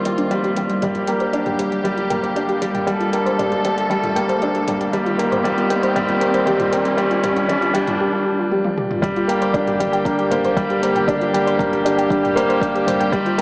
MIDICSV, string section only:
0, 0, Header, 1, 2, 480
1, 0, Start_track
1, 0, Key_signature, -2, "minor"
1, 0, Tempo, 512821
1, 770, Time_signature, 4, 2, 24, 8
1, 12558, End_track
2, 0, Start_track
2, 0, Title_t, "String section"
2, 0, Program_c, 0, 48
2, 0, Note_on_c, 0, 51, 72
2, 0, Note_on_c, 0, 58, 59
2, 0, Note_on_c, 0, 60, 63
2, 0, Note_on_c, 0, 65, 79
2, 732, Note_off_c, 0, 51, 0
2, 732, Note_off_c, 0, 60, 0
2, 752, Note_off_c, 0, 65, 0
2, 773, Note_on_c, 0, 55, 65
2, 773, Note_on_c, 0, 67, 76
2, 776, Note_on_c, 0, 50, 71
2, 2672, Note_off_c, 0, 67, 0
2, 2689, Note_on_c, 0, 69, 85
2, 4567, Note_off_c, 0, 58, 0
2, 4574, Note_off_c, 0, 55, 0
2, 4576, Note_off_c, 0, 50, 0
2, 4591, Note_off_c, 0, 69, 0
2, 4619, Note_on_c, 0, 58, 67
2, 4619, Note_on_c, 0, 60, 67
2, 4620, Note_on_c, 0, 67, 78
2, 4622, Note_on_c, 0, 51, 79
2, 7466, Note_off_c, 0, 58, 0
2, 7466, Note_off_c, 0, 60, 0
2, 7467, Note_off_c, 0, 51, 0
2, 7467, Note_off_c, 0, 67, 0
2, 8455, Note_on_c, 0, 55, 70
2, 8455, Note_on_c, 0, 67, 85
2, 8457, Note_on_c, 0, 50, 74
2, 8457, Note_on_c, 0, 58, 70
2, 12255, Note_off_c, 0, 55, 0
2, 12256, Note_off_c, 0, 50, 0
2, 12295, Note_on_c, 0, 51, 79
2, 12296, Note_on_c, 0, 60, 73
2, 12558, Note_off_c, 0, 51, 0
2, 12558, Note_off_c, 0, 58, 0
2, 12558, Note_off_c, 0, 60, 0
2, 12558, Note_off_c, 0, 67, 0
2, 12558, End_track
0, 0, End_of_file